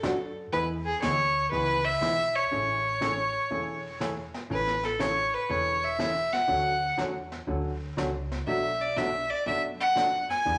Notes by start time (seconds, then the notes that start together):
Already playing: A4
0.03 F#2 C#3 F#3 A3 D4 F#4, snare, hi-hat pedal
0.53 E2 E3 G#3 B3 E4 G#4 B4, brush sweep
0.85 G#4
1.02 D2 E3 G#3 B3 E4 G#4 C#5, snare, hi-hat pedal
1.51 C#2 E3 G#3 B3 E4 G#4 B4, brush sweep
1.84 E5
2.01 B1 E3 G#3 B3 E4 G#4, snare, hi-hat pedal
2.35 C#5
2.51 A1 C#3 E3 A3 C#4 G#4, brush sweep
3.01 C#3 E3 A3 C#4 G#4, snare, hi-hat pedal
3.51 E1 C#3 E3 A3 C#4 G#4, brush sweep
4.00 C#3 E3 A3 C#4 G#4, snare, hi-hat pedal
4.34 snare
4.50 A1 C#3 E3 A3 C#4 G#4 B4, brush sweep
4.67 snare
4.83 A4, snare
4.99 C#3 E3 A3 C#4 G#4 C#5, snare, hi-hat pedal
5.34 B4
5.46 E1 C#3 E3 B4 C#5
5.50 A3 C#4 G#4, brush sweep
5.84 E5
5.99 C#3 E3 A3 C#4 G#4, snare, hi-hat pedal
6.33 F#5, snare
6.48 D2 D3 F#3 A3 C#4 F#4, brush sweep
6.98 E2 D3 F#3 A3 C#4 F#4, snare, hi-hat pedal
7.32 snare
7.47 D2 D3 F#3 A3 C#4 F#4, brush sweep
7.97 C#2 D3 F#3 A3 C#4 F#4, snare, hi-hat pedal
8.32 snare
8.47 B1 B2 F#3 A3 D4 F#4 E5, brush sweep
8.81 D5
8.96 B2 F#3 A3 D4 F#4 E5, snare, hi-hat pedal
9.30 D5
9.46 F#2 B2 F#3 A3 D4 F#4 E5, brush sweep
9.80 F#5
9.96 B2 F#3 A3 D4 F#4, snare, hi-hat pedal
10.30 G#5, snare
10.45 E2 E3 B3 D4 G#4, brush sweep